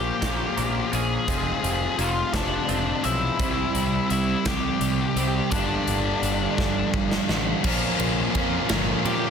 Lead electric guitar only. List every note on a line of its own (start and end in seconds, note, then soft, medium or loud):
0.00 0.90 G4 medium
0.00 0.93 G5 loud
0.93 1.96 G#4 medium
0.93 2.02 G#5 loud
1.99 2.33 F4 medium
1.99 2.33 F5 medium
2.33 3.01 D4 medium
2.33 3.07 D5 medium
3.05 4.08 E4 medium
3.05 4.10 E5 loud
4.11 4.45 E4 medium
4.11 4.46 E5 medium
4.46 5.49 G4 medium
4.46 5.56 G5 medium
5.51 6.90 D4 medium
5.51 6.89 D5 medium
9.06 9.30 G4 medium
9.06 9.30 G5 medium